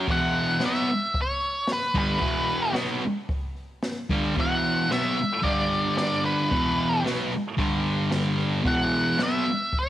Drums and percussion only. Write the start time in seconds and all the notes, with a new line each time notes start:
0.07 kick, open hi-hat
0.34 open hi-hat
0.60 snare
0.87 open hi-hat
1.14 kick, open hi-hat
1.41 open hi-hat
1.67 snare, open hi-hat
1.82 snare
1.95 kick, open hi-hat
2.22 kick, open hi-hat
2.49 open hi-hat
2.75 snare
3.02 open hi-hat
3.28 kick, open hi-hat
3.56 open hi-hat
3.82 snare, open hi-hat
3.96 snare
4.09 kick
4.36 kick, open hi-hat
4.63 open hi-hat
4.91 snare, open hi-hat
5.18 open hi-hat
5.44 kick, open hi-hat
5.71 open hi-hat
5.97 snare, open hi-hat
6.12 snare
6.25 open hi-hat
6.51 kick, open hi-hat
6.79 open hi-hat
7.06 snare, open hi-hat
7.32 open hi-hat
7.58 kick, open hi-hat
7.85 open hi-hat
8.11 snare, open hi-hat
8.39 open hi-hat
8.65 kick, open hi-hat
8.92 open hi-hat
9.19 snare
9.46 open hi-hat
9.73 kick, open hi-hat